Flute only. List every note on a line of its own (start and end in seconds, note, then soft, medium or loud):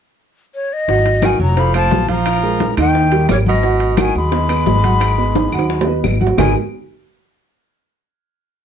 0.55 0.74 C#5 medium
0.73 1.27 D#5 medium
1.25 1.41 G#5 medium
1.42 1.61 A#5 medium
1.59 1.76 B5 medium
1.76 2.08 A5 medium
2.12 2.75 A#5 medium
2.80 3.27 G5 loud
3.32 3.38 C#5 medium
3.48 4.02 D#5 medium
4.01 4.17 G#5 medium
4.17 6.01 B5 medium
6.39 6.55 G#5 medium